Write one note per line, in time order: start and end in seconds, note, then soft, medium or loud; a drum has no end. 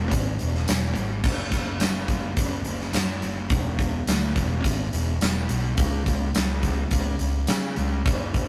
0.11 0.36 G#1 medium
0.11 kick medium
0.11 closed hi-hat loud
0.39 0.64 E1 medium
0.39 closed hi-hat medium
0.55 snare soft
0.68 0.92 E1 medium
0.68 snare loud
0.68 closed hi-hat loud
0.68 tambourine loud
0.95 1.21 G#1 medium
0.95 closed hi-hat medium
1.24 1.49 F#1 medium
1.24 kick loud
1.24 crash medium
1.52 1.76 F#1 medium
1.52 kick medium
1.52 snare soft
1.52 closed hi-hat medium
1.80 2.29 F#1 medium
1.80 snare loud
1.80 closed hi-hat loud
1.80 tambourine loud
2.08 kick medium
2.08 closed hi-hat medium
2.37 2.61 F#1 medium
2.37 kick medium
2.37 closed hi-hat medium
2.64 2.90 F#1 medium
2.64 closed hi-hat medium
2.80 snare soft
2.93 3.18 F#2 medium
2.93 snare loud
2.93 closed hi-hat medium
2.93 tambourine loud
3.22 3.50 F#1 medium
3.22 closed hi-hat medium
3.50 3.99 E1 loud
3.50 kick loud
3.50 closed hi-hat medium
3.79 kick medium
3.79 closed hi-hat medium
4.07 4.32 D2 medium
4.07 snare loud
4.07 closed hi-hat medium
4.07 tambourine loud
4.36 4.60 E1 medium
4.36 kick medium
4.36 closed hi-hat medium
4.64 4.88 G#1 medium
4.64 kick medium
4.64 closed hi-hat loud
4.93 5.17 E1 medium
4.93 closed hi-hat medium
5.21 5.45 E1 medium
5.21 snare loud
5.21 closed hi-hat medium
5.21 tambourine loud
5.49 5.74 B1 medium
5.49 closed hi-hat medium
5.77 6.02 C#2 medium
5.77 kick loud
5.77 closed hi-hat loud
6.06 6.31 C#2 medium
6.06 kick medium
6.06 closed hi-hat medium
6.35 6.83 C#2 medium
6.35 snare loud
6.35 closed hi-hat loud
6.35 tambourine loud
6.63 kick medium
6.63 closed hi-hat medium
6.91 7.16 C#2 medium
6.91 kick medium
6.91 closed hi-hat loud
7.19 7.44 C#2 medium
7.19 closed hi-hat medium
7.47 7.73 C#3 medium
7.47 snare loud
7.47 closed hi-hat loud
7.47 tambourine loud
7.76 8.01 C#2 medium
7.76 closed hi-hat medium
8.06 8.48 F#1 medium
8.06 kick loud
8.06 closed hi-hat medium
8.34 kick medium
8.34 closed hi-hat medium